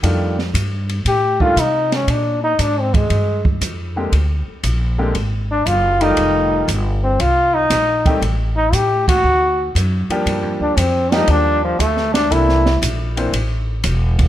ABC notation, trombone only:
X:1
M:4/4
L:1/8
Q:"Swing" 1/4=117
K:Fmix
V:1 name="Trombone"
z4 G F E _D | D E (3D C _A,- A, z3 | z4 z D F E- | E2 z C F E3 |
z E G _G3 z2 | z D C E D F, A, D | =E2 z6 |]